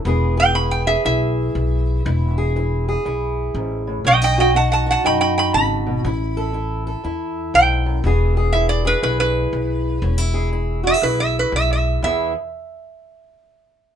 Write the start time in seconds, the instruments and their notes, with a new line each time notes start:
0.05 upright bass E1, steel-string acoustic guitar E2 E3 B3 E4 G#4
0.37 steel-string acoustic guitar G#4, resonator guitar played with a steel bar G5
0.54 steel-string acoustic guitar E2 E4, resonator guitar played with a steel bar B5
0.71 resonator guitar played with a steel bar G5
0.87 steel-string acoustic guitar G#4, resonator guitar played with a steel bar E5
1.04 upright bass B1, steel-string acoustic guitar E2 E4, resonator guitar played with a steel bar E5
1.55 upright bass B1, steel-string acoustic guitar E2
2.05 upright bass E1, steel-string acoustic guitar E2 E4
2.38 steel-string acoustic guitar G#4
2.56 steel-string acoustic guitar E2 E4
2.88 steel-string acoustic guitar G#4
3.05 upright bass B1, steel-string acoustic guitar E2 E4
3.54 upright bass A1, steel-string acoustic guitar G#2
3.87 steel-string acoustic guitar A2
4.05 upright bass B1, steel-string acoustic guitar B2 C#4, resonator guitar played with a steel bar D#5 G5
4.22 steel-string acoustic guitar D#4, resonator guitar played with a steel bar D#5 G5
4.38 steel-string acoustic guitar F#4, resonator guitar played with a steel bar D#5 G5
4.54 steel-string acoustic guitar B2 D#4, resonator guitar played with a steel bar F#5 A5
4.72 resonator guitar played with a steel bar F#5 A5
4.86 steel-string acoustic guitar F#4
4.91 resonator guitar played with a steel bar F#5 A5
5.04 upright bass F#2, steel-string acoustic guitar B2 D#4, resonator guitar played with a steel bar G5 B5
5.21 resonator guitar played with a steel bar G5 B5
5.38 resonator guitar played with a steel bar G5 B5
5.54 upright bass G#1, steel-string acoustic guitar C#3, resonator guitar played with a steel bar B5
5.86 steel-string acoustic guitar B2
6.05 upright bass A1, steel-string acoustic guitar A2 E4
6.37 steel-string acoustic guitar A4
6.53 steel-string acoustic guitar A2 E4
6.87 steel-string acoustic guitar A4
7.04 upright bass E2, steel-string acoustic guitar A2 E4
7.54 upright bass B1, steel-string acoustic guitar G#2, resonator guitar played with a steel bar G5
7.86 steel-string acoustic guitar F#2
8.04 upright bass E1, steel-string acoustic guitar E2 E3 B3 E4 G#4
8.37 steel-string acoustic guitar G#4
8.53 steel-string acoustic guitar E2 E4, resonator guitar played with a steel bar E5
8.69 resonator guitar played with a steel bar D5
8.85 steel-string acoustic guitar G#4, resonator guitar played with a steel bar B4
9.02 upright bass B1, steel-string acoustic guitar E2 E4, resonator guitar played with a steel bar B4
9.20 resonator guitar played with a steel bar B4
9.53 upright bass B1, steel-string acoustic guitar E2
10.02 upright bass E1, steel-string acoustic guitar E2 C#4
10.18 steel-string acoustic guitar E4
10.34 steel-string acoustic guitar G#4
10.52 steel-string acoustic guitar E2 E4
10.83 steel-string acoustic guitar F#4, resonator guitar played with a steel bar E5
10.94 steel-string acoustic guitar G#4
11.02 upright bass B1, steel-string acoustic guitar E2 E4, resonator guitar played with a steel bar B4
11.20 resonator guitar played with a steel bar E5
11.39 resonator guitar played with a steel bar B4
11.52 upright bass B1, steel-string acoustic guitar E2
11.56 resonator guitar played with a steel bar E5
11.73 resonator guitar played with a steel bar E5
12.02 upright bass E2, steel-string acoustic guitar E2 E3 B3 E4 G#4, resonator guitar played with a steel bar E5